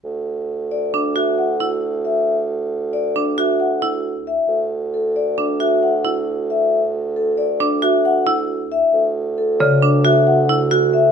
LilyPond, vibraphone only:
\new Staff \with { instrumentName = "Vibraphone" } { \time 5/4 \key d \major \tempo 4 = 135 r4. d''8 r8 e''8 fis''8 r4 e''8 | r4. d''8 r8 e''8 fis''8 r4 e''8 | r4 a'8 d''8 r8 e''8 fis''8 r4 e''8 | r4 a'8 d''8 r8 e''8 fis''8 r4 e''8 |
r4 a'8 d''8 r8 e''8 fis''8 r4 e''8 | }